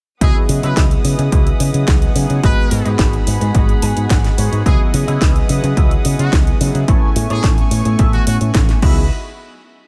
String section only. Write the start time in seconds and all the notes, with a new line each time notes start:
0.22 B4 F#5 D#6
2.44 G#4 B5
4.67 B4 D#6
6.88 A3 G#5 C#6
8.82 F#4 D#5 E5 B5